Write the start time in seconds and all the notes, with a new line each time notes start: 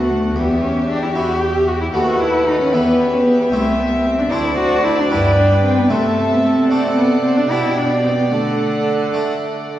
Already playing: D2 A3 B3 D4 F#4 A4 F#5
0.09 A3
0.35 E2 B3 G4 E5
0.62 C#4
0.88 D4
1.03 E4
1.15 B3 E4 F#4
1.41 G4
1.68 F#4
1.81 E4
1.94 D#2 A3 B3 F#4 A4 B4 F#5
2.21 E4
2.47 D#4
2.61 C#4
2.72 E2 B3 E4 G4 E5
3.13 C#4
3.26 B3
3.52 C2 A3 C4 E4 E5
3.79 B3
4.05 C4
4.19 D4
4.31 D2 C4 D4 E4 C5 D5 A5
4.58 F#4
4.84 E4
4.99 D4
5.10 G2 B3 D4 E4 B4 G5
5.38 D4
5.64 C4
5.78 B3
5.90 C3 A3 C4 A4 E5 A5
6.31 B3
6.44 A3
6.69 A3 C4 D4 D5 F#5
6.97 B3
7.23 C4
7.37 D4
7.50 B2 B3 D4 E4 G4 G5
7.77 D4
8.04 C4
8.19 B3
8.31 D3 A3 A4 F#5
9.14 A3 D4